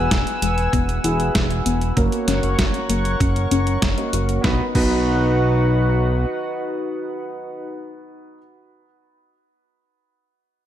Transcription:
Already playing: B3 E4 F#4 G#4 B4 F#5 G#5 E6
0.11 E1 E4, kick, snare, closed hi-hat
0.27 closed hi-hat
0.42 E1 G#3, closed hi-hat
0.58 closed hi-hat
0.73 E1 B3, kick, closed hi-hat
0.89 closed hi-hat
1.04 E1 B3 E4 F#4 G#4, closed hi-hat
1.20 closed hi-hat
1.35 E1 G#3, kick, snare, closed hi-hat
1.51 closed hi-hat
1.66 E1 B3, closed hi-hat
1.81 closed hi-hat
1.97 F#1 A#3 C#4 F#4 A#4 C#5 F#5 C#6, kick, closed hi-hat
2.12 closed hi-hat
2.28 F#1 C#4, snare, closed hi-hat
2.43 F#1, closed hi-hat
2.59 F#1 F#4, kick, snare, closed hi-hat
2.74 closed hi-hat
2.89 F#1 A#3, closed hi-hat
3.05 closed hi-hat
3.20 F#1 C#4, kick, closed hi-hat
3.36 closed hi-hat
3.51 F#1 C#4, closed hi-hat
3.67 closed hi-hat
3.82 F#1 A#3, kick, snare, closed hi-hat
3.98 A#3 C#4 F#4 D#5, closed hi-hat
4.13 F#1 A#3 C#4 F#4 A#4, closed hi-hat
4.29 closed hi-hat
4.44 B1 B3 D#4 F#4 B4 F#5, kick, snare
4.75 B1 B3 D#4 F#4 B4, kick, crash

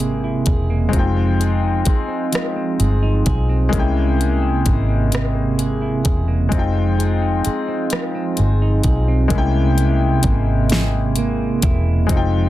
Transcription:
Already playing: G#1 C3 G#3 A#3 C#4 E4 G5
0.00 G#4, closed hi-hat
0.24 E4
0.46 E1 G#4, kick, closed hi-hat
0.70 A#3
0.89 F3 G#3 C4
0.93 F1 D#4 F4, kick, closed hi-hat
0.99 G5
1.17 C4
1.40 G#4, closed hi-hat
1.63 D#4
1.85 G#4, muted fingered electric bass stroke, kick, closed hi-hat
2.08 C4
2.33 F3, cross-stick, closed hi-hat
2.56 C4
2.79 G1 G#4, closed hi-hat
3.03 D#4
3.26 B1 G#4, kick, closed hi-hat
3.49 C4
3.69 C3 G#3 A#3, kick
3.73 C2 C#4 E4, closed hi-hat
3.79 G5
3.96 A#3
4.18 G#4, closed hi-hat
4.42 E4
4.66 G#1 G#4, kick, closed hi-hat
4.88 A#3
5.12 C3, cross-stick, closed hi-hat
5.34 A#3
5.58 G#4, closed hi-hat
5.82 E4
6.04 E1 G#4, kick, closed hi-hat
6.28 A#3
6.49 F1 F3 G#3 C4, kick, closed hi-hat
6.54 D#4 F4
6.59 G5
6.76 C4
6.99 G#4, closed hi-hat
7.22 D#4
7.45 G#4, muted fingered electric bass stroke, closed hi-hat
7.68 C4
7.90 F3, cross-stick, closed hi-hat
8.15 C4
8.37 G1 G#4, closed hi-hat
8.62 D#4
8.83 B1 G#4, kick, closed hi-hat
9.08 C4
9.28 C2 C3 G#3 A#3, kick, closed hi-hat
9.33 C#4 E4
9.38 G5
9.78 E4, closed hi-hat
10.23 G#1 A#3, kick, closed hi-hat
10.70 G#4, snare, closed hi-hat
11.16 A#3, closed hi-hat
11.62 E1 E4, kick, closed hi-hat
12.07 F1 G#3 C4, kick, closed hi-hat
12.11 F3 D#4 F4
12.17 G5

